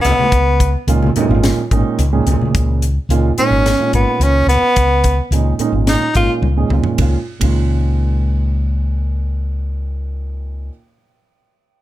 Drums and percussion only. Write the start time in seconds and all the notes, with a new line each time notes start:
0.05 snare, closed hi-hat, low conga
0.19 high conga
0.32 kick, closed hi-hat
0.60 kick, closed hi-hat
0.88 closed hi-hat
1.02 high conga
1.16 closed hi-hat, low conga
1.31 low conga
1.44 snare, closed hi-hat
1.71 kick, closed hi-hat
1.99 closed hi-hat
2.27 closed hi-hat, low conga
2.41 high conga
2.55 kick, closed hi-hat
2.82 closed hi-hat
3.10 closed hi-hat
3.38 closed hi-hat
3.66 snare, closed hi-hat
3.93 kick, closed hi-hat
4.21 closed hi-hat
4.49 snare, closed hi-hat
4.76 kick, closed hi-hat
5.04 kick, closed hi-hat
5.32 closed hi-hat
5.59 closed hi-hat
5.87 snare, closed hi-hat
6.15 kick, closed hi-hat
6.43 high tom
6.70 mid tom
6.84 floor tom
6.98 kick, ride
7.41 kick, ride